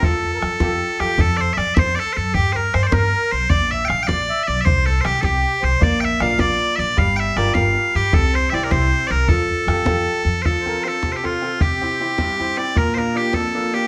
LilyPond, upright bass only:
\new Staff \with { instrumentName = "Upright bass" } { \clef bass \time 6/8 \key f \major \tempo 4. = 104 f,4 f,8 f,8 r8 f,8 | f,4 f,8 f,8 r8 ges,8 | g,4 g,8 g,8 r8 b,,8 | bes,,4 bes,,8 bes,,8 r8 b,,8 |
c,4 c,8 c,8 r8 c,8 | bes,,4 bes,,8 bes,,8 r8 bes,,8 | g,,4 g,,8 g,,8 r8 g,8 | c,4 c,8 c,8 r8 c,8 |
f,4 f,8 f,8 r8 f,8 | r2. | r2. | r2. | }